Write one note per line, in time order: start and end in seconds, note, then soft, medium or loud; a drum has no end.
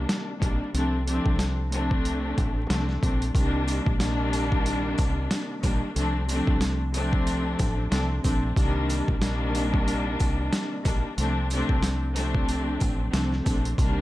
0.00 0.29 C2 loud
0.00 0.29 D#3 loud
0.00 0.30 G3 medium
0.00 0.30 A#3 loud
0.00 0.30 D4 loud
0.09 snare loud
0.09 closed hi-hat loud
0.39 0.58 A#1 medium
0.39 0.71 C2 medium
0.39 0.71 D#3 medium
0.39 0.71 G3 medium
0.39 0.72 A#3 medium
0.39 0.72 D4 medium
0.39 kick medium
0.39 closed hi-hat medium
0.71 1.18 C2 loud
0.71 1.03 C3 loud
0.71 1.03 F3 medium
0.71 1.04 A3 medium
0.71 1.04 C4 medium
0.71 1.04 D4 loud
0.71 closed hi-hat medium
1.06 1.53 C3 medium
1.06 1.54 F3 loud
1.06 1.54 A3 medium
1.06 1.54 C4 medium
1.06 1.55 D4 loud
1.06 closed hi-hat medium
1.26 2.33 C2 medium
1.26 kick medium
1.39 snare loud
1.39 closed hi-hat loud
1.71 2.63 C3 loud
1.71 2.63 F3 medium
1.71 2.63 A3 medium
1.71 2.64 C4 medium
1.71 2.64 D4 loud
1.71 closed hi-hat medium
1.91 kick medium
2.05 closed hi-hat medium
2.38 2.65 A1 medium
2.38 kick medium
2.38 closed hi-hat medium
2.67 2.98 C2 loud
2.67 2.98 C3 medium
2.67 2.99 F3 medium
2.67 2.99 A3 medium
2.67 3.00 C4 medium
2.67 3.00 D4 medium
2.67 snare loud
2.67 closed hi-hat loud
2.89 snare soft
2.99 3.30 A#1 medium
2.99 3.31 C3 medium
2.99 3.31 F3 medium
2.99 3.32 A3 medium
2.99 3.32 C4 medium
2.99 3.32 D4 medium
2.99 kick loud
3.03 closed hi-hat medium
3.22 closed hi-hat medium
3.34 3.95 C2 loud
3.34 3.79 C2 loud
3.34 3.95 D#3 medium
3.34 3.96 G3 loud
3.34 3.96 A#3 loud
3.34 3.96 D4 loud
3.34 kick loud
3.34 closed hi-hat medium
3.34 sleigh bells medium
3.68 closed hi-hat medium
3.68 sleigh bells medium
3.87 4.94 A#1 medium
3.87 kick medium
3.97 5.51 C2 loud
3.97 5.51 D#3 loud
3.97 5.52 G3 loud
3.97 5.52 A#3 loud
3.97 5.52 D4 loud
3.97 snare loud
3.97 closed hi-hat loud
3.97 sleigh bells soft
4.33 closed hi-hat medium
4.33 sleigh bells medium
4.52 kick medium
4.66 closed hi-hat medium
4.66 sleigh bells medium
4.98 5.26 C2 loud
4.98 kick medium
4.98 closed hi-hat medium
4.98 sleigh bells medium
5.31 snare loud
5.31 closed hi-hat loud
5.31 sleigh bells medium
5.61 5.80 A#1 medium
5.61 5.93 C2 medium
5.61 5.93 D#3 medium
5.61 5.93 G3 medium
5.61 5.93 A#3 medium
5.61 5.94 D4 medium
5.61 kick loud
5.61 closed hi-hat medium
5.61 sleigh bells medium
5.93 6.40 C2 loud
5.93 6.25 C3 loud
5.93 6.25 F3 medium
5.93 6.25 A3 medium
5.93 6.26 C4 medium
5.93 6.26 D4 loud
5.93 closed hi-hat medium
5.93 sleigh bells medium
6.28 6.75 C3 medium
6.28 6.76 F3 loud
6.28 6.76 A3 medium
6.28 6.76 C4 loud
6.28 6.76 D4 loud
6.28 closed hi-hat medium
6.28 sleigh bells medium
6.47 7.55 C2 medium
6.47 kick medium
6.61 snare loud
6.61 closed hi-hat loud
6.61 sleigh bells soft
6.93 7.85 C3 loud
6.93 7.85 F3 medium
6.93 7.85 A3 medium
6.93 7.86 C4 medium
6.93 7.86 D4 loud
6.93 closed hi-hat medium
6.93 sleigh bells medium
7.13 kick medium
7.27 closed hi-hat medium
7.27 sleigh bells medium
7.59 7.87 A1 medium
7.59 kick medium
7.59 closed hi-hat medium
7.59 sleigh bells medium
7.89 8.19 C2 loud
7.89 8.20 C3 medium
7.89 8.20 F3 medium
7.89 8.21 A3 medium
7.89 8.22 C4 medium
7.89 8.22 D4 medium
7.89 snare loud
7.89 closed hi-hat loud
7.89 sleigh bells medium
8.21 8.52 A#1 medium
8.21 8.53 C3 medium
8.21 8.53 F3 medium
8.21 8.54 A3 medium
8.21 8.54 C4 medium
8.21 8.54 D4 medium
8.21 kick medium
8.21 sleigh bells medium
8.25 closed hi-hat medium
8.56 9.17 C2 loud
8.56 9.01 C2 loud
8.56 9.17 D#3 medium
8.56 9.18 G3 loud
8.56 9.18 A#3 medium
8.56 9.18 D4 loud
8.56 kick loud
8.56 closed hi-hat medium
8.56 sleigh bells soft
8.89 closed hi-hat medium
8.89 sleigh bells medium
9.08 10.16 A#1 medium
9.08 kick medium
9.19 10.73 C2 loud
9.19 10.73 D#3 loud
9.19 10.73 G3 loud
9.19 10.74 A#3 loud
9.19 10.74 D4 loud
9.19 snare loud
9.19 closed hi-hat loud
9.19 sleigh bells soft
9.55 closed hi-hat medium
9.55 sleigh bells medium
9.74 kick medium
9.87 closed hi-hat medium
9.87 sleigh bells medium
10.20 10.48 C2 loud
10.20 kick medium
10.20 closed hi-hat medium
10.20 sleigh bells medium
10.52 snare loud
10.52 closed hi-hat loud
10.52 sleigh bells medium
10.83 11.01 A#1 medium
10.83 11.14 C2 medium
10.83 11.15 D#3 medium
10.83 11.15 G3 medium
10.83 11.15 A#3 medium
10.83 11.15 D4 medium
10.83 kick loud
10.83 closed hi-hat medium
10.83 sleigh bells medium
11.15 11.62 C2 loud
11.15 11.46 C3 loud
11.15 11.47 F3 medium
11.15 11.47 A3 medium
11.15 11.47 C4 medium
11.15 11.48 D4 loud
11.15 closed hi-hat medium
11.15 sleigh bells soft
11.50 11.97 C3 loud
11.50 11.97 F3 loud
11.50 11.98 A3 medium
11.50 11.98 C4 loud
11.50 11.98 D4 loud
11.50 closed hi-hat medium
11.50 sleigh bells medium
11.69 12.77 C2 medium
11.69 kick medium
11.83 snare loud
11.83 closed hi-hat loud
11.83 sleigh bells soft
12.15 13.06 C3 loud
12.15 13.07 F3 medium
12.15 13.07 A3 medium
12.15 13.07 C4 medium
12.15 13.08 D4 loud
12.15 closed hi-hat medium
12.15 sleigh bells medium
12.35 kick medium
12.48 closed hi-hat medium
12.48 sleigh bells medium
12.80 13.09 A1 medium
12.80 kick medium
12.80 closed hi-hat medium
12.80 sleigh bells medium
13.11 13.41 C2 loud
13.11 13.41 C3 medium
13.11 13.42 F3 medium
13.11 13.43 A3 medium
13.11 13.43 C4 medium
13.11 13.44 D4 medium
13.11 snare loud
13.11 closed hi-hat loud
13.11 sleigh bells medium
13.32 snare soft
13.43 13.74 A#1 medium
13.43 13.75 C3 medium
13.43 13.75 F3 medium
13.43 13.75 A3 medium
13.43 13.76 C4 medium
13.43 13.76 D4 medium
13.43 kick loud
13.43 sleigh bells medium
13.47 closed hi-hat medium
13.65 closed hi-hat medium
13.77 14.01 C2 loud
13.77 14.01 D#3 medium
13.77 14.01 G3 loud
13.77 14.01 A#3 medium
13.77 14.01 D4 loud
13.77 kick loud
13.77 closed hi-hat medium
13.77 sleigh bells soft